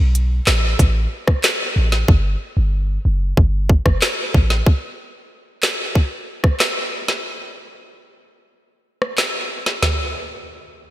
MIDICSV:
0, 0, Header, 1, 3, 480
1, 0, Start_track
1, 0, Tempo, 645161
1, 1550, Time_signature, 4, 2, 24, 8
1, 8112, End_track
2, 0, Start_track
2, 0, Title_t, "808-style bass"
2, 0, Program_c, 0, 38
2, 0, Note_on_c, 0, 35, 96
2, 300, Note_off_c, 0, 35, 0
2, 351, Note_on_c, 0, 33, 91
2, 557, Note_off_c, 0, 33, 0
2, 590, Note_on_c, 0, 33, 103
2, 797, Note_off_c, 0, 33, 0
2, 1311, Note_on_c, 0, 33, 88
2, 1517, Note_off_c, 0, 33, 0
2, 1551, Note_on_c, 0, 31, 103
2, 1757, Note_off_c, 0, 31, 0
2, 1910, Note_on_c, 0, 31, 95
2, 2220, Note_off_c, 0, 31, 0
2, 2271, Note_on_c, 0, 30, 90
2, 2477, Note_off_c, 0, 30, 0
2, 2510, Note_on_c, 0, 31, 96
2, 2820, Note_off_c, 0, 31, 0
2, 2869, Note_on_c, 0, 30, 83
2, 2973, Note_off_c, 0, 30, 0
2, 3232, Note_on_c, 0, 33, 90
2, 3438, Note_off_c, 0, 33, 0
2, 8112, End_track
3, 0, Start_track
3, 0, Title_t, "Drums"
3, 112, Note_on_c, 9, 42, 62
3, 187, Note_off_c, 9, 42, 0
3, 347, Note_on_c, 9, 39, 82
3, 350, Note_on_c, 9, 38, 103
3, 421, Note_off_c, 9, 39, 0
3, 425, Note_off_c, 9, 38, 0
3, 590, Note_on_c, 9, 36, 93
3, 592, Note_on_c, 9, 42, 76
3, 664, Note_off_c, 9, 36, 0
3, 666, Note_off_c, 9, 42, 0
3, 948, Note_on_c, 9, 37, 95
3, 950, Note_on_c, 9, 36, 96
3, 1023, Note_off_c, 9, 37, 0
3, 1024, Note_off_c, 9, 36, 0
3, 1068, Note_on_c, 9, 39, 84
3, 1068, Note_on_c, 9, 42, 70
3, 1072, Note_on_c, 9, 38, 107
3, 1143, Note_off_c, 9, 39, 0
3, 1143, Note_off_c, 9, 42, 0
3, 1146, Note_off_c, 9, 38, 0
3, 1430, Note_on_c, 9, 38, 66
3, 1504, Note_off_c, 9, 38, 0
3, 1550, Note_on_c, 9, 36, 114
3, 1625, Note_off_c, 9, 36, 0
3, 2510, Note_on_c, 9, 36, 91
3, 2584, Note_off_c, 9, 36, 0
3, 2749, Note_on_c, 9, 36, 94
3, 2823, Note_off_c, 9, 36, 0
3, 2869, Note_on_c, 9, 37, 96
3, 2870, Note_on_c, 9, 36, 90
3, 2943, Note_off_c, 9, 37, 0
3, 2944, Note_off_c, 9, 36, 0
3, 2989, Note_on_c, 9, 39, 77
3, 2992, Note_on_c, 9, 38, 103
3, 3064, Note_off_c, 9, 39, 0
3, 3067, Note_off_c, 9, 38, 0
3, 3232, Note_on_c, 9, 36, 84
3, 3306, Note_off_c, 9, 36, 0
3, 3350, Note_on_c, 9, 38, 64
3, 3425, Note_off_c, 9, 38, 0
3, 3471, Note_on_c, 9, 36, 118
3, 3545, Note_off_c, 9, 36, 0
3, 4187, Note_on_c, 9, 39, 83
3, 4191, Note_on_c, 9, 38, 107
3, 4262, Note_off_c, 9, 39, 0
3, 4265, Note_off_c, 9, 38, 0
3, 4430, Note_on_c, 9, 36, 92
3, 4504, Note_off_c, 9, 36, 0
3, 4789, Note_on_c, 9, 37, 94
3, 4790, Note_on_c, 9, 36, 94
3, 4863, Note_off_c, 9, 37, 0
3, 4864, Note_off_c, 9, 36, 0
3, 4909, Note_on_c, 9, 39, 79
3, 4912, Note_on_c, 9, 38, 103
3, 4984, Note_off_c, 9, 39, 0
3, 4987, Note_off_c, 9, 38, 0
3, 5271, Note_on_c, 9, 38, 67
3, 5345, Note_off_c, 9, 38, 0
3, 6709, Note_on_c, 9, 37, 89
3, 6783, Note_off_c, 9, 37, 0
3, 6829, Note_on_c, 9, 39, 78
3, 6832, Note_on_c, 9, 38, 100
3, 6903, Note_off_c, 9, 39, 0
3, 6906, Note_off_c, 9, 38, 0
3, 7190, Note_on_c, 9, 38, 65
3, 7264, Note_off_c, 9, 38, 0
3, 7310, Note_on_c, 9, 38, 105
3, 7310, Note_on_c, 9, 43, 104
3, 7385, Note_off_c, 9, 38, 0
3, 7385, Note_off_c, 9, 43, 0
3, 8112, End_track
0, 0, End_of_file